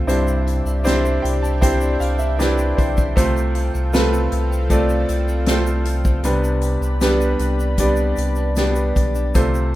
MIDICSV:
0, 0, Header, 1, 6, 480
1, 0, Start_track
1, 0, Tempo, 770218
1, 49, Time_signature, 4, 2, 24, 8
1, 4368, Tempo, 781250
1, 6054, End_track
2, 0, Start_track
2, 0, Title_t, "Analog synth pad"
2, 0, Program_c, 0, 89
2, 47, Note_on_c, 0, 79, 84
2, 48, Note_on_c, 0, 67, 81
2, 51, Note_on_c, 0, 76, 76
2, 53, Note_on_c, 0, 74, 69
2, 1951, Note_off_c, 0, 67, 0
2, 1952, Note_off_c, 0, 76, 0
2, 1953, Note_off_c, 0, 74, 0
2, 1974, Note_on_c, 0, 77, 72
2, 1977, Note_on_c, 0, 69, 81
2, 1978, Note_on_c, 0, 60, 69
2, 3864, Note_off_c, 0, 79, 0
2, 3872, Note_off_c, 0, 77, 0
2, 3874, Note_off_c, 0, 60, 0
2, 3874, Note_off_c, 0, 69, 0
2, 3894, Note_on_c, 0, 67, 78
2, 3894, Note_on_c, 0, 71, 72
2, 3894, Note_on_c, 0, 83, 87
2, 3898, Note_on_c, 0, 74, 75
2, 5791, Note_off_c, 0, 67, 0
2, 5791, Note_off_c, 0, 71, 0
2, 5791, Note_off_c, 0, 83, 0
2, 5793, Note_off_c, 0, 74, 0
2, 5816, Note_on_c, 0, 72, 73
2, 5821, Note_on_c, 0, 69, 80
2, 5821, Note_on_c, 0, 84, 89
2, 5822, Note_on_c, 0, 77, 73
2, 6054, Note_off_c, 0, 69, 0
2, 6054, Note_off_c, 0, 72, 0
2, 6054, Note_off_c, 0, 77, 0
2, 6054, Note_off_c, 0, 84, 0
2, 6054, End_track
3, 0, Start_track
3, 0, Title_t, "Grand piano"
3, 0, Program_c, 1, 0
3, 0, Control_c, 1, 64, 127
3, 44, Note_on_c, 1, 43, 64
3, 45, Note_on_c, 1, 60, 72
3, 46, Note_on_c, 1, 62, 65
3, 47, Note_on_c, 1, 64, 71
3, 48, Note_on_c, 1, 67, 69
3, 50, Note_on_c, 1, 72, 84
3, 56, Control_c, 1, 64, 0
3, 180, Control_c, 1, 64, 127
3, 505, Note_off_c, 1, 60, 0
3, 505, Note_off_c, 1, 62, 0
3, 506, Note_off_c, 1, 64, 0
3, 506, Note_off_c, 1, 67, 0
3, 507, Note_off_c, 1, 72, 0
3, 523, Note_on_c, 1, 60, 89
3, 527, Note_on_c, 1, 64, 74
3, 527, Note_on_c, 1, 67, 76
3, 528, Note_on_c, 1, 62, 79
3, 529, Note_on_c, 1, 72, 90
3, 743, Note_off_c, 1, 43, 0
3, 762, Note_on_c, 1, 79, 74
3, 877, Note_off_c, 1, 79, 0
3, 888, Note_on_c, 1, 81, 72
3, 982, Note_off_c, 1, 60, 0
3, 984, Note_off_c, 1, 62, 0
3, 984, Note_off_c, 1, 64, 0
3, 984, Note_off_c, 1, 67, 0
3, 985, Note_off_c, 1, 72, 0
3, 1000, Note_off_c, 1, 81, 0
3, 1004, Note_on_c, 1, 62, 70
3, 1005, Note_on_c, 1, 60, 78
3, 1005, Note_on_c, 1, 64, 71
3, 1008, Note_on_c, 1, 79, 70
3, 1010, Note_on_c, 1, 67, 73
3, 1011, Note_on_c, 1, 72, 91
3, 1232, Note_off_c, 1, 79, 0
3, 1248, Note_on_c, 1, 77, 71
3, 1360, Note_off_c, 1, 77, 0
3, 1364, Note_on_c, 1, 76, 67
3, 1463, Note_off_c, 1, 62, 0
3, 1463, Note_off_c, 1, 64, 0
3, 1464, Note_off_c, 1, 60, 0
3, 1466, Note_off_c, 1, 67, 0
3, 1466, Note_off_c, 1, 72, 0
3, 1478, Note_off_c, 1, 76, 0
3, 1486, Note_on_c, 1, 60, 78
3, 1490, Note_on_c, 1, 62, 80
3, 1490, Note_on_c, 1, 74, 66
3, 1491, Note_on_c, 1, 64, 76
3, 1491, Note_on_c, 1, 67, 76
3, 1494, Note_on_c, 1, 71, 83
3, 1714, Note_off_c, 1, 74, 0
3, 1726, Note_on_c, 1, 72, 77
3, 1944, Note_off_c, 1, 60, 0
3, 1946, Note_off_c, 1, 62, 0
3, 1947, Note_off_c, 1, 64, 0
3, 1947, Note_off_c, 1, 67, 0
3, 1949, Note_off_c, 1, 71, 0
3, 1951, Note_off_c, 1, 72, 0
3, 1967, Note_on_c, 1, 57, 84
3, 1969, Note_on_c, 1, 60, 68
3, 1971, Note_on_c, 1, 48, 68
3, 1971, Note_on_c, 1, 65, 69
3, 1973, Note_on_c, 1, 69, 71
3, 1973, Note_on_c, 1, 72, 84
3, 1980, Control_c, 1, 64, 0
3, 2081, Control_c, 1, 64, 127
3, 2424, Note_off_c, 1, 57, 0
3, 2425, Note_off_c, 1, 60, 0
3, 2426, Note_off_c, 1, 65, 0
3, 2427, Note_off_c, 1, 69, 0
3, 2427, Note_off_c, 1, 72, 0
3, 2451, Note_on_c, 1, 57, 79
3, 2452, Note_on_c, 1, 65, 84
3, 2454, Note_on_c, 1, 60, 75
3, 2456, Note_on_c, 1, 69, 75
3, 2456, Note_on_c, 1, 71, 96
3, 2665, Note_off_c, 1, 48, 0
3, 2906, Note_off_c, 1, 57, 0
3, 2907, Note_off_c, 1, 65, 0
3, 2908, Note_off_c, 1, 60, 0
3, 2909, Note_off_c, 1, 69, 0
3, 2909, Note_off_c, 1, 71, 0
3, 2930, Note_on_c, 1, 57, 76
3, 2930, Note_on_c, 1, 60, 69
3, 2933, Note_on_c, 1, 65, 69
3, 2933, Note_on_c, 1, 69, 65
3, 2933, Note_on_c, 1, 74, 87
3, 3386, Note_off_c, 1, 57, 0
3, 3386, Note_off_c, 1, 60, 0
3, 3388, Note_off_c, 1, 65, 0
3, 3388, Note_off_c, 1, 69, 0
3, 3388, Note_off_c, 1, 74, 0
3, 3408, Note_on_c, 1, 57, 72
3, 3409, Note_on_c, 1, 60, 73
3, 3410, Note_on_c, 1, 65, 70
3, 3413, Note_on_c, 1, 72, 82
3, 3416, Note_on_c, 1, 69, 73
3, 3864, Note_off_c, 1, 57, 0
3, 3865, Note_off_c, 1, 60, 0
3, 3866, Note_off_c, 1, 65, 0
3, 3867, Note_off_c, 1, 72, 0
3, 3868, Note_off_c, 1, 69, 0
3, 3886, Note_on_c, 1, 55, 74
3, 3890, Note_on_c, 1, 59, 68
3, 3893, Note_on_c, 1, 48, 66
3, 3894, Note_on_c, 1, 62, 68
3, 3894, Note_on_c, 1, 67, 68
3, 3894, Note_on_c, 1, 71, 79
3, 3896, Control_c, 1, 64, 0
3, 4023, Control_c, 1, 64, 127
3, 4344, Note_off_c, 1, 55, 0
3, 4346, Note_off_c, 1, 59, 0
3, 4348, Note_off_c, 1, 62, 0
3, 4348, Note_off_c, 1, 67, 0
3, 4348, Note_off_c, 1, 71, 0
3, 4369, Note_on_c, 1, 55, 81
3, 4372, Note_on_c, 1, 59, 76
3, 4376, Note_on_c, 1, 62, 80
3, 4376, Note_on_c, 1, 67, 76
3, 4379, Note_on_c, 1, 71, 88
3, 4585, Note_off_c, 1, 48, 0
3, 4822, Note_off_c, 1, 55, 0
3, 4823, Note_off_c, 1, 59, 0
3, 4825, Note_off_c, 1, 62, 0
3, 4825, Note_off_c, 1, 67, 0
3, 4827, Note_off_c, 1, 71, 0
3, 4846, Note_on_c, 1, 55, 77
3, 4848, Note_on_c, 1, 59, 68
3, 4852, Note_on_c, 1, 62, 69
3, 4852, Note_on_c, 1, 67, 68
3, 4855, Note_on_c, 1, 74, 85
3, 5302, Note_off_c, 1, 55, 0
3, 5303, Note_off_c, 1, 59, 0
3, 5305, Note_off_c, 1, 62, 0
3, 5305, Note_off_c, 1, 67, 0
3, 5306, Note_off_c, 1, 74, 0
3, 5328, Note_on_c, 1, 55, 68
3, 5330, Note_on_c, 1, 59, 71
3, 5331, Note_on_c, 1, 62, 70
3, 5331, Note_on_c, 1, 67, 67
3, 5333, Note_on_c, 1, 74, 84
3, 5785, Note_off_c, 1, 55, 0
3, 5786, Note_off_c, 1, 59, 0
3, 5786, Note_off_c, 1, 62, 0
3, 5787, Note_off_c, 1, 67, 0
3, 5787, Note_off_c, 1, 74, 0
3, 5803, Note_on_c, 1, 57, 70
3, 5806, Note_on_c, 1, 60, 62
3, 5806, Note_on_c, 1, 65, 62
3, 5807, Note_on_c, 1, 48, 65
3, 5808, Note_on_c, 1, 69, 67
3, 5808, Note_on_c, 1, 72, 82
3, 5816, Control_c, 1, 64, 0
3, 5924, Control_c, 1, 64, 127
3, 6054, Note_off_c, 1, 48, 0
3, 6054, Note_off_c, 1, 57, 0
3, 6054, Note_off_c, 1, 60, 0
3, 6054, Note_off_c, 1, 65, 0
3, 6054, Note_off_c, 1, 69, 0
3, 6054, Note_off_c, 1, 72, 0
3, 6054, End_track
4, 0, Start_track
4, 0, Title_t, "Clean electric guitar"
4, 0, Program_c, 2, 27
4, 0, Note_on_c, 2, 60, 54
4, 0, Note_on_c, 2, 65, 57
4, 52, Note_on_c, 2, 48, 80
4, 57, Note_on_c, 2, 72, 65
4, 100, Note_off_c, 2, 65, 0
4, 170, Note_off_c, 2, 60, 0
4, 173, Note_on_c, 2, 62, 56
4, 291, Note_on_c, 2, 64, 62
4, 406, Note_off_c, 2, 62, 0
4, 413, Note_on_c, 2, 62, 59
4, 525, Note_off_c, 2, 64, 0
4, 533, Note_on_c, 2, 64, 64
4, 650, Note_off_c, 2, 72, 0
4, 652, Note_on_c, 2, 72, 64
4, 767, Note_off_c, 2, 64, 0
4, 774, Note_on_c, 2, 64, 55
4, 888, Note_off_c, 2, 62, 0
4, 895, Note_on_c, 2, 62, 56
4, 1012, Note_off_c, 2, 48, 0
4, 1016, Note_off_c, 2, 72, 0
4, 1018, Note_on_c, 2, 72, 60
4, 1129, Note_off_c, 2, 62, 0
4, 1136, Note_on_c, 2, 62, 55
4, 1245, Note_off_c, 2, 64, 0
4, 1252, Note_on_c, 2, 64, 59
4, 1364, Note_off_c, 2, 62, 0
4, 1371, Note_on_c, 2, 62, 57
4, 1489, Note_off_c, 2, 64, 0
4, 1497, Note_on_c, 2, 64, 60
4, 1613, Note_off_c, 2, 72, 0
4, 1615, Note_on_c, 2, 72, 61
4, 1728, Note_off_c, 2, 64, 0
4, 1735, Note_on_c, 2, 64, 62
4, 1846, Note_off_c, 2, 62, 0
4, 1854, Note_on_c, 2, 62, 61
4, 1973, Note_on_c, 2, 48, 72
4, 1976, Note_off_c, 2, 72, 0
4, 1978, Note_on_c, 2, 69, 58
4, 2020, Note_off_c, 2, 62, 0
4, 2021, Note_off_c, 2, 64, 0
4, 2095, Note_on_c, 2, 60, 58
4, 2213, Note_on_c, 2, 65, 64
4, 2324, Note_off_c, 2, 60, 0
4, 2331, Note_on_c, 2, 60, 60
4, 2442, Note_off_c, 2, 65, 0
4, 2449, Note_on_c, 2, 65, 59
4, 2566, Note_off_c, 2, 69, 0
4, 2574, Note_on_c, 2, 69, 66
4, 2687, Note_off_c, 2, 65, 0
4, 2694, Note_on_c, 2, 65, 58
4, 2807, Note_off_c, 2, 60, 0
4, 2815, Note_on_c, 2, 60, 54
4, 2925, Note_off_c, 2, 48, 0
4, 2929, Note_off_c, 2, 69, 0
4, 2932, Note_on_c, 2, 48, 72
4, 2936, Note_on_c, 2, 69, 63
4, 3045, Note_off_c, 2, 60, 0
4, 3052, Note_on_c, 2, 60, 57
4, 3167, Note_off_c, 2, 65, 0
4, 3174, Note_on_c, 2, 65, 59
4, 3288, Note_off_c, 2, 60, 0
4, 3296, Note_on_c, 2, 60, 59
4, 3407, Note_off_c, 2, 65, 0
4, 3415, Note_on_c, 2, 65, 63
4, 3525, Note_off_c, 2, 69, 0
4, 3532, Note_on_c, 2, 69, 58
4, 3647, Note_off_c, 2, 65, 0
4, 3654, Note_on_c, 2, 65, 61
4, 3766, Note_off_c, 2, 60, 0
4, 3774, Note_on_c, 2, 60, 61
4, 3886, Note_off_c, 2, 60, 0
4, 3891, Note_off_c, 2, 69, 0
4, 3894, Note_on_c, 2, 60, 74
4, 3897, Note_on_c, 2, 71, 61
4, 3939, Note_off_c, 2, 48, 0
4, 3940, Note_off_c, 2, 65, 0
4, 4011, Note_on_c, 2, 62, 53
4, 4131, Note_on_c, 2, 67, 57
4, 4242, Note_off_c, 2, 62, 0
4, 4249, Note_on_c, 2, 62, 59
4, 4361, Note_off_c, 2, 67, 0
4, 4369, Note_on_c, 2, 67, 61
4, 4484, Note_off_c, 2, 71, 0
4, 4491, Note_on_c, 2, 71, 61
4, 4604, Note_off_c, 2, 67, 0
4, 4611, Note_on_c, 2, 67, 54
4, 4724, Note_off_c, 2, 62, 0
4, 4732, Note_on_c, 2, 62, 54
4, 4844, Note_off_c, 2, 71, 0
4, 4846, Note_off_c, 2, 60, 0
4, 4848, Note_on_c, 2, 60, 71
4, 4852, Note_on_c, 2, 71, 62
4, 4961, Note_off_c, 2, 62, 0
4, 4968, Note_on_c, 2, 62, 52
4, 5079, Note_off_c, 2, 67, 0
4, 5086, Note_on_c, 2, 67, 50
4, 5198, Note_off_c, 2, 62, 0
4, 5205, Note_on_c, 2, 62, 55
4, 5318, Note_off_c, 2, 67, 0
4, 5325, Note_on_c, 2, 67, 57
4, 5438, Note_off_c, 2, 71, 0
4, 5445, Note_on_c, 2, 71, 59
4, 5559, Note_off_c, 2, 67, 0
4, 5566, Note_on_c, 2, 67, 62
4, 5680, Note_off_c, 2, 62, 0
4, 5687, Note_on_c, 2, 62, 55
4, 5807, Note_off_c, 2, 71, 0
4, 5811, Note_on_c, 2, 48, 69
4, 5814, Note_on_c, 2, 69, 54
4, 5856, Note_off_c, 2, 62, 0
4, 5856, Note_off_c, 2, 67, 0
4, 5931, Note_off_c, 2, 60, 0
4, 5931, Note_on_c, 2, 60, 57
4, 6054, Note_off_c, 2, 48, 0
4, 6054, Note_off_c, 2, 60, 0
4, 6054, Note_off_c, 2, 69, 0
4, 6054, End_track
5, 0, Start_track
5, 0, Title_t, "Sub bass"
5, 0, Program_c, 3, 38
5, 43, Note_on_c, 3, 36, 106
5, 383, Note_off_c, 3, 36, 0
5, 407, Note_on_c, 3, 36, 93
5, 744, Note_off_c, 3, 36, 0
5, 773, Note_on_c, 3, 36, 91
5, 1226, Note_off_c, 3, 36, 0
5, 1248, Note_on_c, 3, 36, 86
5, 1705, Note_off_c, 3, 36, 0
5, 1733, Note_on_c, 3, 35, 89
5, 1955, Note_off_c, 3, 35, 0
5, 1974, Note_on_c, 3, 36, 93
5, 2307, Note_off_c, 3, 36, 0
5, 2335, Note_on_c, 3, 36, 99
5, 2667, Note_off_c, 3, 36, 0
5, 2694, Note_on_c, 3, 36, 105
5, 3147, Note_off_c, 3, 36, 0
5, 3173, Note_on_c, 3, 36, 89
5, 3866, Note_off_c, 3, 36, 0
5, 3885, Note_on_c, 3, 36, 98
5, 4222, Note_off_c, 3, 36, 0
5, 4244, Note_on_c, 3, 36, 93
5, 4580, Note_off_c, 3, 36, 0
5, 4605, Note_on_c, 3, 36, 98
5, 5059, Note_off_c, 3, 36, 0
5, 5085, Note_on_c, 3, 36, 82
5, 5542, Note_off_c, 3, 36, 0
5, 5567, Note_on_c, 3, 35, 82
5, 5791, Note_off_c, 3, 35, 0
5, 5808, Note_on_c, 3, 36, 101
5, 6054, Note_off_c, 3, 36, 0
5, 6054, End_track
6, 0, Start_track
6, 0, Title_t, "Drums"
6, 54, Note_on_c, 9, 82, 66
6, 57, Note_on_c, 9, 42, 84
6, 117, Note_off_c, 9, 82, 0
6, 120, Note_off_c, 9, 42, 0
6, 172, Note_on_c, 9, 82, 50
6, 235, Note_off_c, 9, 82, 0
6, 295, Note_on_c, 9, 42, 79
6, 358, Note_off_c, 9, 42, 0
6, 414, Note_on_c, 9, 82, 44
6, 476, Note_off_c, 9, 82, 0
6, 529, Note_on_c, 9, 82, 58
6, 540, Note_on_c, 9, 42, 79
6, 542, Note_on_c, 9, 38, 104
6, 591, Note_off_c, 9, 82, 0
6, 602, Note_off_c, 9, 42, 0
6, 604, Note_off_c, 9, 38, 0
6, 658, Note_on_c, 9, 82, 51
6, 720, Note_off_c, 9, 82, 0
6, 779, Note_on_c, 9, 42, 77
6, 842, Note_off_c, 9, 42, 0
6, 901, Note_on_c, 9, 82, 43
6, 963, Note_off_c, 9, 82, 0
6, 1011, Note_on_c, 9, 36, 91
6, 1013, Note_on_c, 9, 82, 67
6, 1015, Note_on_c, 9, 42, 97
6, 1074, Note_off_c, 9, 36, 0
6, 1076, Note_off_c, 9, 82, 0
6, 1078, Note_off_c, 9, 42, 0
6, 1126, Note_on_c, 9, 82, 45
6, 1189, Note_off_c, 9, 82, 0
6, 1250, Note_on_c, 9, 82, 45
6, 1258, Note_on_c, 9, 42, 77
6, 1312, Note_off_c, 9, 82, 0
6, 1321, Note_off_c, 9, 42, 0
6, 1364, Note_on_c, 9, 82, 46
6, 1427, Note_off_c, 9, 82, 0
6, 1494, Note_on_c, 9, 42, 86
6, 1495, Note_on_c, 9, 82, 65
6, 1499, Note_on_c, 9, 38, 104
6, 1556, Note_off_c, 9, 42, 0
6, 1558, Note_off_c, 9, 82, 0
6, 1561, Note_off_c, 9, 38, 0
6, 1609, Note_on_c, 9, 82, 48
6, 1672, Note_off_c, 9, 82, 0
6, 1735, Note_on_c, 9, 36, 86
6, 1735, Note_on_c, 9, 42, 69
6, 1797, Note_off_c, 9, 36, 0
6, 1798, Note_off_c, 9, 42, 0
6, 1853, Note_on_c, 9, 82, 46
6, 1856, Note_on_c, 9, 36, 94
6, 1915, Note_off_c, 9, 82, 0
6, 1918, Note_off_c, 9, 36, 0
6, 1975, Note_on_c, 9, 36, 101
6, 1977, Note_on_c, 9, 82, 63
6, 1979, Note_on_c, 9, 42, 85
6, 2037, Note_off_c, 9, 36, 0
6, 2040, Note_off_c, 9, 82, 0
6, 2041, Note_off_c, 9, 42, 0
6, 2100, Note_on_c, 9, 82, 48
6, 2162, Note_off_c, 9, 82, 0
6, 2212, Note_on_c, 9, 42, 79
6, 2274, Note_off_c, 9, 42, 0
6, 2336, Note_on_c, 9, 82, 40
6, 2399, Note_off_c, 9, 82, 0
6, 2452, Note_on_c, 9, 82, 61
6, 2457, Note_on_c, 9, 42, 75
6, 2459, Note_on_c, 9, 38, 108
6, 2514, Note_off_c, 9, 82, 0
6, 2519, Note_off_c, 9, 42, 0
6, 2521, Note_off_c, 9, 38, 0
6, 2580, Note_on_c, 9, 82, 49
6, 2642, Note_off_c, 9, 82, 0
6, 2691, Note_on_c, 9, 42, 76
6, 2753, Note_off_c, 9, 42, 0
6, 2821, Note_on_c, 9, 82, 48
6, 2884, Note_off_c, 9, 82, 0
6, 2929, Note_on_c, 9, 36, 84
6, 2929, Note_on_c, 9, 42, 94
6, 2935, Note_on_c, 9, 82, 63
6, 2991, Note_off_c, 9, 36, 0
6, 2991, Note_off_c, 9, 42, 0
6, 2997, Note_off_c, 9, 82, 0
6, 3049, Note_on_c, 9, 82, 46
6, 3112, Note_off_c, 9, 82, 0
6, 3170, Note_on_c, 9, 42, 78
6, 3175, Note_on_c, 9, 82, 45
6, 3232, Note_off_c, 9, 42, 0
6, 3237, Note_off_c, 9, 82, 0
6, 3293, Note_on_c, 9, 82, 46
6, 3356, Note_off_c, 9, 82, 0
6, 3404, Note_on_c, 9, 42, 90
6, 3409, Note_on_c, 9, 38, 102
6, 3421, Note_on_c, 9, 82, 59
6, 3467, Note_off_c, 9, 42, 0
6, 3471, Note_off_c, 9, 38, 0
6, 3483, Note_off_c, 9, 82, 0
6, 3531, Note_on_c, 9, 82, 45
6, 3594, Note_off_c, 9, 82, 0
6, 3648, Note_on_c, 9, 42, 78
6, 3710, Note_off_c, 9, 42, 0
6, 3769, Note_on_c, 9, 82, 47
6, 3770, Note_on_c, 9, 36, 95
6, 3831, Note_off_c, 9, 82, 0
6, 3832, Note_off_c, 9, 36, 0
6, 3886, Note_on_c, 9, 42, 87
6, 3892, Note_on_c, 9, 82, 69
6, 3949, Note_off_c, 9, 42, 0
6, 3954, Note_off_c, 9, 82, 0
6, 4014, Note_on_c, 9, 82, 49
6, 4076, Note_off_c, 9, 82, 0
6, 4122, Note_on_c, 9, 42, 77
6, 4129, Note_on_c, 9, 82, 46
6, 4184, Note_off_c, 9, 42, 0
6, 4191, Note_off_c, 9, 82, 0
6, 4254, Note_on_c, 9, 82, 43
6, 4316, Note_off_c, 9, 82, 0
6, 4368, Note_on_c, 9, 82, 56
6, 4369, Note_on_c, 9, 42, 80
6, 4371, Note_on_c, 9, 38, 106
6, 4430, Note_off_c, 9, 42, 0
6, 4430, Note_off_c, 9, 82, 0
6, 4432, Note_off_c, 9, 38, 0
6, 4492, Note_on_c, 9, 82, 50
6, 4554, Note_off_c, 9, 82, 0
6, 4604, Note_on_c, 9, 42, 72
6, 4612, Note_on_c, 9, 82, 48
6, 4665, Note_off_c, 9, 42, 0
6, 4673, Note_off_c, 9, 82, 0
6, 4730, Note_on_c, 9, 82, 51
6, 4792, Note_off_c, 9, 82, 0
6, 4840, Note_on_c, 9, 42, 94
6, 4843, Note_on_c, 9, 36, 92
6, 4844, Note_on_c, 9, 82, 61
6, 4902, Note_off_c, 9, 42, 0
6, 4904, Note_off_c, 9, 36, 0
6, 4906, Note_off_c, 9, 82, 0
6, 4954, Note_on_c, 9, 82, 48
6, 5015, Note_off_c, 9, 82, 0
6, 5079, Note_on_c, 9, 82, 46
6, 5089, Note_on_c, 9, 42, 75
6, 5141, Note_off_c, 9, 82, 0
6, 5151, Note_off_c, 9, 42, 0
6, 5195, Note_on_c, 9, 82, 43
6, 5257, Note_off_c, 9, 82, 0
6, 5321, Note_on_c, 9, 82, 61
6, 5323, Note_on_c, 9, 42, 83
6, 5327, Note_on_c, 9, 38, 101
6, 5383, Note_off_c, 9, 82, 0
6, 5384, Note_off_c, 9, 42, 0
6, 5389, Note_off_c, 9, 38, 0
6, 5441, Note_on_c, 9, 82, 48
6, 5503, Note_off_c, 9, 82, 0
6, 5568, Note_on_c, 9, 36, 84
6, 5568, Note_on_c, 9, 82, 43
6, 5570, Note_on_c, 9, 42, 74
6, 5629, Note_off_c, 9, 36, 0
6, 5630, Note_off_c, 9, 82, 0
6, 5631, Note_off_c, 9, 42, 0
6, 5684, Note_on_c, 9, 82, 46
6, 5745, Note_off_c, 9, 82, 0
6, 5803, Note_on_c, 9, 82, 65
6, 5806, Note_on_c, 9, 42, 82
6, 5807, Note_on_c, 9, 36, 99
6, 5865, Note_off_c, 9, 82, 0
6, 5867, Note_off_c, 9, 42, 0
6, 5868, Note_off_c, 9, 36, 0
6, 5927, Note_on_c, 9, 82, 48
6, 5988, Note_off_c, 9, 82, 0
6, 6054, End_track
0, 0, End_of_file